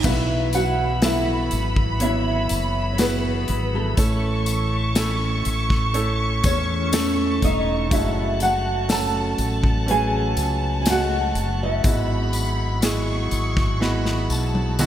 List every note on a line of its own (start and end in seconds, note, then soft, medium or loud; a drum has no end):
0.03 1.48 B1 medium
0.03 1.48 B2 medium
0.03 7.88 E3 medium
0.03 3.95 F#3 medium
0.03 0.97 B3 medium
0.03 3.94 B3 medium
0.03 0.97 E4 medium
0.03 0.51 E4 medium
0.03 0.98 F#4 medium
0.03 0.98 B4 medium
0.03 0.55 E5 medium
0.03 3.94 B5 medium
0.03 kick loud
0.03 crash medium
0.03 tambourine soft
0.53 1.00 F#4 medium
0.53 1.05 F#5 medium
0.53 closed hi-hat medium
0.53 tambourine medium
1.02 1.96 B3 medium
1.02 1.96 E4 medium
1.02 1.98 E4 medium
1.02 1.96 F#4 medium
1.02 1.96 A4 medium
1.02 2.01 E5 loud
1.02 snare loud
1.02 closed hi-hat medium
1.02 tambourine medium
1.51 2.47 G#1 medium
1.51 closed hi-hat medium
1.51 tambourine soft
1.76 kick medium
2.00 2.94 B3 medium
2.00 2.94 E4 medium
2.00 2.89 E4 medium
2.00 2.94 F#4 medium
2.00 2.95 C#5 medium
2.00 2.93 E5 loud
2.00 closed hi-hat medium
2.49 3.45 F#1 medium
2.49 closed hi-hat medium
2.49 tambourine medium
2.93 3.00 C#5 medium
2.98 3.92 B3 medium
2.98 3.70 B3 medium
2.98 3.93 E4 medium
2.98 3.93 F#4 medium
2.98 3.93 G#4 medium
2.98 3.75 B4 medium
2.98 snare loud
2.98 closed hi-hat loud
2.98 tambourine medium
3.48 3.95 G#1 medium
3.48 closed hi-hat medium
3.75 5.67 A3 medium
3.75 5.67 A4 medium
3.97 5.41 A1 medium
3.97 5.41 A2 medium
3.97 4.91 A3 medium
3.97 7.87 A3 medium
3.97 4.91 C#4 medium
3.97 7.88 C#4 medium
3.97 4.91 E4 medium
3.97 4.92 A4 medium
3.97 7.91 C#6 loud
3.97 kick loud
3.97 closed hi-hat medium
3.97 tambourine medium
4.46 closed hi-hat medium
4.46 tambourine soft
4.95 5.89 A3 medium
4.95 5.90 C#4 medium
4.95 5.90 E4 medium
4.95 5.90 A4 medium
4.95 snare loud
4.95 closed hi-hat medium
4.95 tambourine medium
5.45 6.40 A1 medium
5.45 closed hi-hat medium
5.45 tambourine soft
5.70 kick medium
5.70 snare soft
5.94 6.88 A3 medium
5.94 6.88 C#4 medium
5.94 6.88 E4 medium
5.94 6.88 A4 medium
5.94 closed hi-hat medium
5.94 tambourine soft
6.44 7.38 E2 medium
6.44 7.39 C#4 medium
6.44 7.46 C#5 medium
6.44 kick loud
6.44 closed hi-hat medium
6.44 tambourine medium
6.92 7.87 E3 medium
6.92 7.86 A3 medium
6.92 7.86 C#4 medium
6.92 7.87 A4 medium
6.92 snare loud
6.92 closed hi-hat loud
6.92 tambourine medium
7.42 7.92 E1 medium
7.42 7.89 D#4 medium
7.42 7.89 D#5 medium
7.42 kick medium
7.42 closed hi-hat medium
7.42 tambourine soft
7.90 9.35 F#1 loud
7.90 14.86 F#3 medium
7.90 8.85 G#3 medium
7.90 8.84 A3 medium
7.90 8.84 C#4 medium
7.90 11.81 C#4 medium
7.90 8.38 E4 medium
7.90 8.84 F#4 medium
7.90 14.86 F#4 medium
7.90 8.43 E5 medium
7.90 11.85 A5 medium
7.90 kick loud
7.90 closed hi-hat medium
7.90 tambourine medium
8.40 8.87 F#4 medium
8.40 8.92 F#5 medium
8.40 closed hi-hat medium
8.40 tambourine soft
8.89 9.83 A3 medium
8.89 9.83 C#4 medium
8.89 9.83 F#4 medium
8.89 9.83 A4 medium
8.89 9.85 A4 medium
8.89 9.90 A5 loud
8.89 snare loud
8.89 closed hi-hat medium
8.89 tambourine medium
9.38 10.33 A1 medium
9.38 closed hi-hat medium
9.38 tambourine soft
9.64 kick medium
9.86 10.81 A3 medium
9.86 10.81 C#4 medium
9.86 10.81 F#4 medium
9.86 10.82 B4 medium
9.86 closed hi-hat medium
9.91 10.77 G#4 medium
9.91 10.80 G#5 loud
10.36 11.31 C#2 medium
10.36 closed hi-hat medium
10.36 tambourine soft
10.81 10.87 G#5 medium
10.86 11.81 G#3 medium
10.86 11.80 A3 medium
10.86 11.80 C#4 medium
10.86 11.80 F#4 medium
10.86 snare loud
10.86 closed hi-hat loud
10.86 tambourine medium
10.90 11.58 F#4 medium
10.90 11.63 F#5 loud
11.35 11.81 F#1 medium
11.35 closed hi-hat medium
11.35 tambourine soft
11.63 13.54 E4 medium
11.63 12.85 E5 medium
11.84 13.28 G#1 medium
11.84 13.28 G#2 medium
11.84 12.78 G#3 medium
11.84 12.78 B3 medium
11.84 12.78 E4 medium
11.84 14.86 E4 medium
11.84 12.78 F#4 medium
11.84 12.83 B5 medium
11.84 kick loud
11.84 closed hi-hat medium
11.84 tambourine medium
12.33 closed hi-hat medium
12.33 tambourine medium
12.82 13.76 G#3 medium
12.82 13.76 B3 medium
12.82 13.77 E4 medium
12.82 13.77 G#4 medium
12.82 13.54 D#5 medium
12.82 13.81 C#6 loud
12.82 snare medium
12.82 closed hi-hat medium
12.82 tambourine medium
13.31 14.26 G#1 medium
13.31 closed hi-hat medium
13.31 tambourine soft
13.57 kick medium
13.57 snare soft
13.80 14.74 G#3 medium
13.80 14.74 B3 medium
13.80 14.75 E4 medium
13.80 14.75 F#4 medium
13.80 14.30 B5 medium
13.80 snare medium
14.06 snare soft
14.30 14.86 B1 loud
14.30 14.80 A5 medium
14.30 tambourine medium
14.55 high tom medium
14.79 14.86 G#3 medium
14.79 14.86 B3 medium
14.79 14.86 E4 medium
14.79 14.86 F#4 loud
14.79 14.86 G#5 medium
14.79 mid tom medium
14.79 tambourine medium